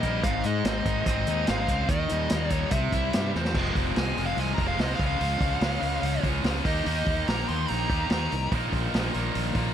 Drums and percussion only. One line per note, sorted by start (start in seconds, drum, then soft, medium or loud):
0.03 kick medium
0.03 closed hi-hat medium
0.24 kick loud
0.24 closed hi-hat medium
0.44 closed hi-hat medium
0.65 snare loud
0.65 closed hi-hat medium
0.86 kick medium
0.86 closed hi-hat medium
1.06 kick loud
1.06 closed hi-hat medium
1.27 closed hi-hat medium
1.47 snare loud
1.47 closed hi-hat medium
1.68 kick medium
1.68 closed hi-hat medium
1.89 kick loud
1.89 closed hi-hat medium
2.09 closed hi-hat medium
2.30 snare loud
2.30 closed hi-hat medium
2.50 kick medium
2.50 closed hi-hat medium
2.71 kick loud
2.71 closed hi-hat medium
2.92 kick medium
2.92 closed hi-hat medium
3.13 snare loud
3.13 closed hi-hat medium
3.35 snare medium
3.45 snare medium
3.55 kick loud
3.55 crash loud
3.75 kick medium
3.75 open hi-hat medium
3.96 snare loud
3.96 open hi-hat medium
4.17 open hi-hat medium
4.38 open hi-hat medium
4.58 kick medium
4.58 open hi-hat medium
4.79 snare loud
4.79 open hi-hat medium
4.99 kick loud
4.99 open hi-hat medium
5.21 open hi-hat medium
5.41 kick medium
5.41 open hi-hat medium
5.61 snare loud
5.61 open hi-hat medium
5.82 open hi-hat medium
6.03 open hi-hat medium
6.23 kick medium
6.23 open hi-hat medium
6.44 snare loud
6.44 open hi-hat medium
6.65 kick loud
6.65 open hi-hat medium
6.86 open hi-hat medium
7.07 kick medium
7.07 open hi-hat medium
7.28 snare loud
7.28 open hi-hat medium
7.48 open hi-hat medium
7.68 open hi-hat medium
7.90 kick medium
7.90 open hi-hat medium
8.10 snare loud
8.10 open hi-hat medium
8.32 open hi-hat medium
8.52 kick loud
8.52 open hi-hat medium
8.73 kick medium
8.73 open hi-hat medium
8.94 snare loud
8.94 open hi-hat medium
9.14 open hi-hat medium
9.35 open hi-hat medium
9.55 kick medium
9.55 open hi-hat medium